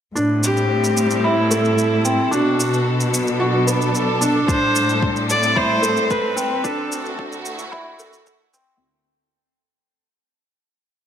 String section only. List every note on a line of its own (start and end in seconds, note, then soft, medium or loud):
0.15 2.32 A2 medium
0.36 2.32 G3 medium
0.36 2.32 C4 medium
1.12 7.51 A4 medium
2.32 4.49 B2 medium
3.07 4.48 F#3 medium
3.28 5.35 D4 medium
4.48 6.64 A2 medium
4.59 6.65 G3 medium
5.22 7.51 C4 medium
6.64 8.81 D3 medium
6.88 8.81 A3 medium
6.94 8.81 F#4 medium
7.54 8.81 E4 medium